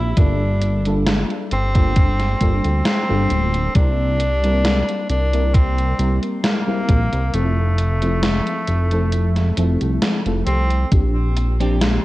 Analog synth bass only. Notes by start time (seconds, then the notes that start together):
Already playing: A#1
0.17 G1
1.52 G1
2.41 G1
2.65 D2
3.10 G1
3.31 D1
3.75 C2
5.10 C2
5.99 C2
6.89 A#1
7.13 C2
7.34 F1
8.68 F1
9.58 F1
9.81 C2
10.26 F1
10.47 C2
10.92 A#1